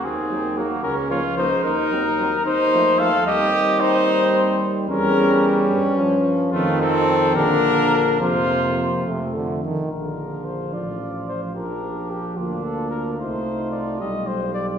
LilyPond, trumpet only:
\new Staff \with { instrumentName = "Trumpet" } { \time 6/8 \key f \phrygian \tempo 4. = 74 c'4 bes8 des'8 f'8 ees'8 | ees'4. ees'4 a'8 | \key bes \major g'4 ees'4. r8 | cis'4. r4. |
a8 c'4 d'4. | f'4. r4. | f'2. | d'4. d'4. |
f'2. | }